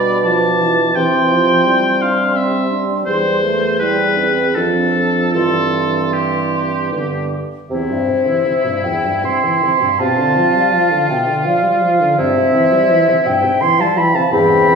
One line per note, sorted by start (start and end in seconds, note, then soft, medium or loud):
0.00 0.96 B2 medium
0.00 0.26 G3 medium
0.00 0.95 D4 medium
0.00 0.24 D5 medium
0.00 0.25 B5 medium
0.24 0.62 F3 medium
0.24 0.97 A5 medium
0.24 0.95 D6 medium
0.60 0.94 E3 medium
0.95 2.76 C3 medium
0.95 1.33 E3 medium
0.95 1.65 E4 medium
0.95 2.03 G5 medium
0.95 2.34 C6 medium
1.31 1.68 F3 medium
1.66 3.06 G3 medium
1.66 2.04 E4 medium
2.02 2.37 D4 medium
2.02 2.38 F5 medium
2.36 2.73 C4 medium
2.36 2.82 E5 medium
2.36 3.49 C6 medium
2.71 3.06 D4 medium
3.06 4.57 E2 medium
3.06 3.45 G3 medium
3.06 3.53 E4 medium
3.06 3.76 C5 medium
3.43 3.79 A3 medium
3.80 4.28 G3 medium
3.80 4.19 E4 medium
3.80 4.56 B4 medium
3.80 4.57 G5 medium
4.17 4.57 C4 medium
4.55 5.34 F2 medium
4.55 5.35 F3 medium
4.55 5.33 D4 medium
4.55 5.32 A4 medium
4.55 5.34 A5 medium
5.33 6.89 G2 medium
5.33 6.93 E3 medium
5.33 6.93 C4 soft
5.33 6.15 A4 medium
5.33 6.89 C6 medium
6.14 7.32 G4 medium
6.92 7.36 G2 soft
6.92 7.37 D3 soft
6.92 7.36 B3 soft
6.92 7.36 D6 soft
7.70 7.92 E2 medium
7.70 8.33 C3 medium
7.70 9.97 E4 medium
7.70 8.81 C5 medium
7.70 8.86 E5 medium
7.90 8.11 G2 soft
8.09 8.28 C3 soft
8.27 8.48 E3 soft
8.46 8.67 C3 medium
8.66 8.88 G2 soft
8.84 9.07 E2 medium
8.84 9.26 E5 medium
8.84 9.25 G5 medium
9.06 9.26 G2 soft
9.25 9.46 C3 medium
9.25 10.01 G5 medium
9.25 10.01 C6 medium
9.44 9.65 E3 soft
9.64 9.83 C3 medium
9.82 9.99 G2 soft
9.99 10.19 B2 medium
9.99 10.62 C3 medium
9.99 12.14 F4 medium
9.99 11.10 F5 medium
9.99 11.12 A5 medium
10.18 10.38 D3 medium
10.36 10.57 F3 medium
10.56 10.75 G3 medium
10.74 10.93 F3 medium
10.91 11.11 D3 medium
11.09 11.28 B2 medium
11.09 11.45 E5 medium
11.09 11.47 G5 medium
11.27 11.46 D3 medium
11.45 11.65 F3 medium
11.45 11.87 D5 medium
11.45 12.18 F5 medium
11.63 11.83 G3 medium
11.81 12.02 F3 medium
12.01 12.18 D3 medium
12.18 12.39 G2 medium
12.18 12.78 C3 medium
12.18 14.02 E4 medium
12.18 13.27 C5 medium
12.18 13.28 E5 medium
12.37 12.56 C3 medium
12.55 12.74 E3 medium
12.72 12.92 G3 medium
12.91 13.11 E3 medium
13.09 13.29 C3 medium
13.25 13.46 G2 medium
13.25 13.62 E5 medium
13.25 13.63 G5 medium
13.45 13.63 C3 medium
13.61 13.82 E3 medium
13.61 13.81 G5 medium
13.61 13.82 C6 loud
13.79 13.99 G3 medium
13.79 13.97 F5 medium
13.79 13.99 A5 medium
13.96 14.17 E3 medium
13.96 14.15 G5 medium
13.96 14.17 B5 loud
14.14 14.31 C3 medium
14.14 14.31 F5 medium
14.14 14.32 A5 medium
14.32 14.75 E2 medium
14.32 14.52 G2 medium
14.32 14.75 C4 medium
14.32 14.75 G5 loud
14.32 14.75 B5 loud
14.50 14.70 C3 medium
14.69 14.75 E3 medium